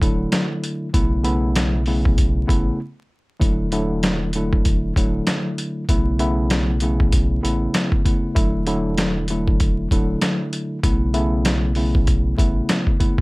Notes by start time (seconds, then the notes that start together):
0.02 D1 D3 F#3 A3 E4, kick, closed hi-hat
0.32 snare, closed hi-hat
0.64 closed hi-hat
0.94 B1 C#3 A3 B3 E4, kick, closed hi-hat
1.24 C#3 A3 B3 E4, closed hi-hat
1.56 snare, closed hi-hat
1.86 C#3 A3 B3 E4, open hi-hat
2.05 kick
2.18 kick, closed hi-hat
2.47 A1 C#3 A3 B3 E4, kick, closed hi-hat
3.40 E1 D3 F#3 A3 E4, kick, closed hi-hat
3.72 D3 F#3 A3 E4, closed hi-hat
4.03 snare, closed hi-hat
4.33 D3 F#3 A3 E4, closed hi-hat
4.53 kick
4.65 kick, closed hi-hat
4.96 D1 D3 F#3 A3 E4, kick, closed hi-hat
5.27 snare, closed hi-hat
5.58 closed hi-hat
5.89 B1 C#3 A3 B3 E4, kick, closed hi-hat
6.19 C#3 A3 B3 E4, closed hi-hat
6.50 snare, closed hi-hat
6.80 C#3 A3 B3 E4, closed hi-hat
7.00 kick
7.12 kick, closed hi-hat
7.43 A1 C#3 A3 B3 E4, closed hi-hat
7.74 snare, closed hi-hat
7.92 kick
8.05 C#3 A3 B3 E4, kick, closed hi-hat
8.35 E1 D3 F#3 A3 E4, kick, closed hi-hat
8.67 D3 F#3 A3 E4, closed hi-hat
8.98 snare, closed hi-hat
9.28 D3 F#3 A3 E4, closed hi-hat
9.48 kick
9.60 kick, closed hi-hat
9.91 D1 D3 F#3 A3 E4, kick, closed hi-hat
10.22 snare, closed hi-hat
10.53 closed hi-hat
10.83 B1 C#3 A3 B3 E4, kick, closed hi-hat
11.13 C#3 A3 B3 E4, closed hi-hat
11.45 snare, closed hi-hat
11.75 C#3 A3 B3 E4, open hi-hat
11.95 kick
12.07 kick, closed hi-hat
12.37 A1 C#3 A3 B3 E4, kick, closed hi-hat
12.69 snare, closed hi-hat
12.87 kick
12.99 C#3 A3 B3 E4, kick, closed hi-hat
13.18 kick